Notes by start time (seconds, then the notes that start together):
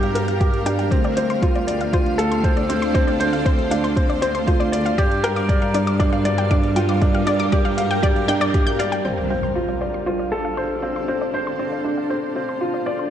Already playing: G2 G3 D4 F4 G4 A#4 D5 F5
0.03 F5, closed hi-hat
0.15 A#4, closed hi-hat
0.28 F6, closed hi-hat
0.40 G4 G5, kick, closed hi-hat
0.54 closed hi-hat
0.66 D4 G5, closed hi-hat
0.79 G5, closed hi-hat
0.91 D2 C4 D4, kick, closed hi-hat
1.04 D5, closed hi-hat
1.17 C4 C5, closed hi-hat
1.30 C6, closed hi-hat
1.37 A4 C5
1.42 F4 C5, kick, closed hi-hat
1.55 D5, closed hi-hat
1.67 D5, closed hi-hat
1.81 F5, closed hi-hat
1.93 F4 C5, kick, closed hi-hat
2.06 closed hi-hat
2.18 A4 F5, closed hi-hat
2.31 C6, closed hi-hat
2.44 C5, kick, closed hi-hat
2.57 D5, closed hi-hat
2.69 C4 C5, closed hi-hat
2.82 C6, closed hi-hat
2.94 C4 C5, kick, closed hi-hat
3.07 D5, closed hi-hat
3.20 C5, closed hi-hat
3.33 F5, closed hi-hat
3.45 C4 C5, kick, closed hi-hat
3.59 closed hi-hat
3.71 D4 F5, closed hi-hat
3.84 C6, closed hi-hat
3.96 C4, kick, closed hi-hat
4.10 D5, closed hi-hat
4.22 C4 C5, closed hi-hat
4.35 C6, closed hi-hat
4.47 F4 C5, kick, closed hi-hat
4.60 D5, closed hi-hat
4.72 D5, closed hi-hat
4.86 F5, closed hi-hat
4.98 G2 G3 G4 D5, kick, closed hi-hat
5.11 closed hi-hat
5.24 A#4 G5, closed hi-hat
5.36 D6, closed hi-hat
5.48 G4 D5, kick, closed hi-hat
5.52 A#4
5.62 F5, closed hi-hat
5.74 D4 D5, closed hi-hat
5.87 D6, closed hi-hat
6.00 D4 D5, kick, closed hi-hat
6.13 F5, closed hi-hat
6.25 D5, closed hi-hat
6.38 G5, closed hi-hat
6.51 D4 D5, kick, closed hi-hat
6.64 closed hi-hat
6.76 F4 G5, closed hi-hat
6.89 D6, closed hi-hat
7.01 D4, kick, closed hi-hat
7.14 F5, closed hi-hat
7.27 D4 D5, closed hi-hat
7.39 D6, closed hi-hat
7.52 G4 D5, kick, closed hi-hat
7.65 F5, closed hi-hat
7.77 F5, closed hi-hat
7.91 G5, closed hi-hat
8.03 G4 D5, kick, closed hi-hat
8.16 closed hi-hat
8.28 D4 G5, closed hi-hat
8.41 D5, closed hi-hat
8.54 G4, kick, closed hi-hat
8.67 G6, closed hi-hat
8.79 D5 F5, closed hi-hat
8.92 G5, closed hi-hat
9.05 C4 D4 C5, impact
9.30 C4 F5
9.36 A4
9.43 C6
9.53 F4 C5
9.69 D5
9.81 C5 D5
9.94 C6
10.06 F4 C5
10.19 D5
10.32 A4
10.45 F5
10.57 C5
10.82 C4 F5
10.96 C6
11.08 C4
11.21 D5
11.34 C5
11.47 C6
11.59 C4 C5
11.72 D5
11.85 D4
11.98 F5
12.10 C4 C5
12.36 C4 F5
12.49 C6
12.61 F4
12.74 D5
12.86 C5 D5
12.99 C6